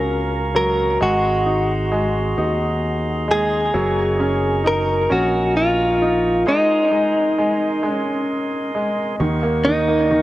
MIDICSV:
0, 0, Header, 1, 5, 480
1, 0, Start_track
1, 0, Tempo, 909091
1, 531, Time_signature, 6, 3, 24, 8
1, 5397, End_track
2, 0, Start_track
2, 0, Title_t, "Tonewheel organ"
2, 0, Program_c, 0, 16
2, 0, Note_on_c, 0, 70, 58
2, 0, Note_on_c, 0, 77, 51
2, 0, Note_on_c, 0, 82, 53
2, 0, Note_on_c, 0, 85, 61
2, 519, Note_off_c, 0, 77, 0
2, 519, Note_off_c, 0, 85, 0
2, 521, Note_off_c, 0, 70, 0
2, 533, Note_on_c, 0, 68, 62
2, 533, Note_on_c, 0, 84, 70
2, 535, Note_on_c, 0, 75, 54
2, 1959, Note_off_c, 0, 68, 0
2, 1959, Note_off_c, 0, 84, 0
2, 1973, Note_on_c, 0, 85, 72
2, 1974, Note_on_c, 0, 70, 66
2, 3396, Note_off_c, 0, 82, 0
2, 3399, Note_off_c, 0, 85, 0
2, 3411, Note_on_c, 0, 80, 54
2, 3412, Note_on_c, 0, 84, 74
2, 4832, Note_off_c, 0, 70, 0
2, 4834, Note_off_c, 0, 75, 0
2, 4837, Note_off_c, 0, 80, 0
2, 4838, Note_off_c, 0, 84, 0
2, 4859, Note_on_c, 0, 75, 60
2, 4859, Note_on_c, 0, 85, 74
2, 4861, Note_on_c, 0, 70, 65
2, 4863, Note_on_c, 0, 78, 63
2, 5397, Note_off_c, 0, 70, 0
2, 5397, Note_off_c, 0, 75, 0
2, 5397, Note_off_c, 0, 78, 0
2, 5397, Note_off_c, 0, 85, 0
2, 5397, End_track
3, 0, Start_track
3, 0, Title_t, "Clean electric guitar"
3, 0, Program_c, 1, 27
3, 0, Note_on_c, 1, 70, 96
3, 290, Note_off_c, 1, 70, 0
3, 297, Note_on_c, 1, 70, 87
3, 539, Note_off_c, 1, 70, 0
3, 541, Note_on_c, 1, 66, 79
3, 1748, Note_off_c, 1, 66, 0
3, 1750, Note_on_c, 1, 68, 86
3, 2440, Note_off_c, 1, 68, 0
3, 2468, Note_on_c, 1, 70, 90
3, 2703, Note_on_c, 1, 66, 75
3, 2707, Note_off_c, 1, 70, 0
3, 2937, Note_off_c, 1, 66, 0
3, 2939, Note_on_c, 1, 65, 73
3, 3421, Note_off_c, 1, 65, 0
3, 3423, Note_on_c, 1, 63, 74
3, 4178, Note_off_c, 1, 63, 0
3, 4178, Note_on_c, 1, 61, 74
3, 4597, Note_off_c, 1, 61, 0
3, 5094, Note_on_c, 1, 63, 84
3, 5397, Note_off_c, 1, 63, 0
3, 5397, End_track
4, 0, Start_track
4, 0, Title_t, "Upright piano"
4, 0, Program_c, 2, 0
4, 0, Control_c, 2, 64, 127
4, 0, Note_on_c, 2, 54, 51
4, 0, Note_on_c, 2, 61, 53
4, 281, Note_off_c, 2, 54, 0
4, 289, Note_on_c, 2, 54, 46
4, 508, Note_off_c, 2, 61, 0
4, 523, Note_off_c, 2, 54, 0
4, 531, Note_on_c, 2, 56, 64
4, 539, Control_c, 2, 64, 0
4, 639, Control_c, 2, 64, 127
4, 771, Note_on_c, 2, 63, 48
4, 1004, Note_off_c, 2, 56, 0
4, 1012, Note_on_c, 2, 56, 58
4, 1247, Note_off_c, 2, 63, 0
4, 1255, Note_on_c, 2, 63, 54
4, 1723, Note_off_c, 2, 56, 0
4, 1731, Note_on_c, 2, 56, 48
4, 1953, Note_off_c, 2, 63, 0
4, 1965, Note_off_c, 2, 56, 0
4, 1974, Note_on_c, 2, 54, 64
4, 1979, Control_c, 2, 64, 0
4, 2082, Control_c, 2, 64, 127
4, 2217, Note_on_c, 2, 61, 48
4, 2451, Note_on_c, 2, 63, 57
4, 2685, Note_off_c, 2, 61, 0
4, 2693, Note_on_c, 2, 61, 54
4, 3170, Note_off_c, 2, 63, 0
4, 3178, Note_on_c, 2, 63, 52
4, 3392, Note_off_c, 2, 61, 0
4, 3393, Note_off_c, 2, 54, 0
4, 3408, Note_off_c, 2, 63, 0
4, 3415, Note_on_c, 2, 56, 65
4, 3421, Control_c, 2, 64, 0
4, 3505, Control_c, 2, 64, 127
4, 3643, Note_off_c, 2, 56, 0
4, 3651, Note_on_c, 2, 56, 52
4, 3891, Note_off_c, 2, 56, 0
4, 3898, Note_on_c, 2, 56, 58
4, 4126, Note_off_c, 2, 56, 0
4, 4134, Note_on_c, 2, 56, 55
4, 4611, Note_off_c, 2, 56, 0
4, 4619, Note_on_c, 2, 56, 46
4, 4849, Note_off_c, 2, 56, 0
4, 4857, Note_on_c, 2, 51, 61
4, 4859, Control_c, 2, 64, 0
4, 4947, Control_c, 2, 64, 127
4, 4978, Note_on_c, 2, 58, 54
4, 5093, Note_off_c, 2, 51, 0
4, 5101, Note_on_c, 2, 51, 51
4, 5210, Note_off_c, 2, 58, 0
4, 5218, Note_on_c, 2, 58, 52
4, 5328, Note_off_c, 2, 51, 0
4, 5336, Note_on_c, 2, 51, 58
4, 5397, Note_off_c, 2, 51, 0
4, 5397, Note_off_c, 2, 58, 0
4, 5397, End_track
5, 0, Start_track
5, 0, Title_t, "Fretless electric bass"
5, 0, Program_c, 3, 35
5, 0, Note_on_c, 3, 37, 89
5, 511, Note_off_c, 3, 37, 0
5, 536, Note_on_c, 3, 32, 97
5, 1233, Note_off_c, 3, 32, 0
5, 1254, Note_on_c, 3, 39, 81
5, 1952, Note_off_c, 3, 39, 0
5, 1975, Note_on_c, 3, 30, 90
5, 2673, Note_off_c, 3, 30, 0
5, 2698, Note_on_c, 3, 34, 87
5, 3394, Note_off_c, 3, 34, 0
5, 4856, Note_on_c, 3, 39, 95
5, 5397, Note_off_c, 3, 39, 0
5, 5397, End_track
0, 0, End_of_file